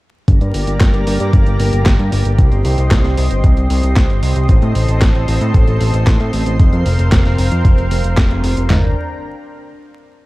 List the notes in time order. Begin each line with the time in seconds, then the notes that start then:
0.28 G1 A#3 G4 D5 A#5, kick, closed hi-hat
0.41 G2, closed hi-hat
0.54 G1, open hi-hat
0.67 G1, closed hi-hat
0.81 G1, kick, snare, clap, closed hi-hat
0.94 G1, closed hi-hat
1.07 G1, open hi-hat
1.20 G2, closed hi-hat
1.33 G1, kick, closed hi-hat
1.46 G1, closed hi-hat
1.60 G1, open hi-hat
1.73 G1, closed hi-hat
1.86 G1, kick, snare, clap, closed hi-hat
1.99 G2, closed hi-hat
2.12 G1, open hi-hat
2.25 G1, closed hi-hat
2.38 C2 C4 D#5 C6, kick, closed hi-hat
2.52 G1, closed hi-hat
2.65 C2, open hi-hat
2.78 C2, closed hi-hat
2.91 C2, kick, snare, clap, closed hi-hat
3.04 C2, snare, closed hi-hat
3.17 C2, open hi-hat
3.31 G1, closed hi-hat
3.44 C2, kick, closed hi-hat
3.57 C2, closed hi-hat
3.70 C2, open hi-hat
3.83 C2, closed hi-hat
3.96 C2, kick, snare, clap, closed hi-hat
4.10 G1, closed hi-hat
4.23 C2, open hi-hat
4.36 C2, closed hi-hat
4.49 A1 A4, kick, closed hi-hat
4.62 A2, closed hi-hat
4.75 A1, open hi-hat
4.88 A1, closed hi-hat
5.02 A1, kick, snare, clap, closed hi-hat
5.15 A1, closed hi-hat
5.28 A1, open hi-hat
5.41 A2, closed hi-hat
5.54 A1, kick, closed hi-hat
5.67 A1, closed hi-hat
5.81 A1, open hi-hat
5.94 A1, closed hi-hat
6.07 A1, kick, snare, clap, closed hi-hat
6.20 A2, closed hi-hat
6.33 A1, open hi-hat
6.46 A1, closed hi-hat
6.59 F1 C4 A#4 F5, kick, closed hi-hat
6.73 F2, closed hi-hat
6.86 F1, open hi-hat
6.99 F1, closed hi-hat
7.12 F1, kick, snare, clap, closed hi-hat
7.25 F1, snare, closed hi-hat
7.38 F1, open hi-hat
7.52 F2, closed hi-hat
7.65 F1, kick, closed hi-hat
7.78 F1, closed hi-hat
7.91 F1, open hi-hat
8.04 F1, closed hi-hat
8.17 F1, kick, snare, clap, closed hi-hat
8.31 F1, closed hi-hat
8.44 F1, open hi-hat
8.57 F1, closed hi-hat
8.70 G1 D4 A#4 G5 A#5, snare, clap, floor tom